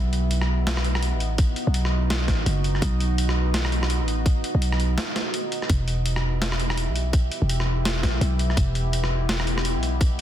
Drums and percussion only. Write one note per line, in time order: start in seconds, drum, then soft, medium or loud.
0.13 closed hi-hat soft
0.31 closed hi-hat medium
0.41 cross-stick medium
0.67 snare loud
0.67 closed hi-hat medium
0.77 cross-stick medium
0.84 closed hi-hat soft
0.95 cross-stick medium
1.02 closed hi-hat medium
1.20 closed hi-hat soft
1.38 kick loud
1.38 closed hi-hat medium
1.56 closed hi-hat soft
1.74 closed hi-hat medium
1.85 cross-stick medium
2.10 snare loud
2.10 closed hi-hat medium
2.28 kick medium
2.28 snare medium
2.28 closed hi-hat soft
2.46 closed hi-hat medium
2.64 closed hi-hat soft
2.75 cross-stick soft
2.82 kick loud
2.82 closed hi-hat medium
3.00 closed hi-hat soft
3.18 closed hi-hat medium
3.29 cross-stick medium
3.54 snare loud
3.54 closed hi-hat medium
3.65 cross-stick medium
3.72 closed hi-hat soft
3.83 cross-stick medium
3.90 closed hi-hat medium
4.08 closed hi-hat soft
4.26 kick loud
4.26 closed hi-hat medium
4.44 closed hi-hat soft
4.62 closed hi-hat medium
4.72 cross-stick medium
4.80 closed hi-hat soft
4.98 snare loud
4.98 closed hi-hat medium
5.16 snare medium
5.16 closed hi-hat soft
5.34 closed hi-hat medium
5.52 closed hi-hat soft
5.62 cross-stick soft
5.70 kick loud
5.70 closed hi-hat medium
5.88 closed hi-hat soft
6.06 closed hi-hat medium
6.16 cross-stick medium
6.42 snare loud
6.42 closed hi-hat medium
6.52 cross-stick medium
6.60 closed hi-hat soft
6.70 cross-stick medium
6.77 closed hi-hat medium
6.96 closed hi-hat soft
7.13 kick loud
7.13 closed hi-hat medium
7.32 closed hi-hat soft
7.49 closed hi-hat medium
7.60 cross-stick medium
7.85 snare loud
7.85 closed hi-hat medium
8.03 kick medium
8.03 snare medium
8.03 closed hi-hat soft
8.21 closed hi-hat medium
8.39 closed hi-hat soft
8.50 cross-stick soft
8.57 kick loud
8.57 closed hi-hat medium
8.75 closed hi-hat soft
8.93 closed hi-hat medium
9.04 cross-stick medium
9.29 snare loud
9.29 closed hi-hat medium
9.40 cross-stick medium
9.47 closed hi-hat soft
9.58 cross-stick medium
9.65 closed hi-hat medium
9.83 closed hi-hat soft
10.01 kick loud
10.01 closed hi-hat medium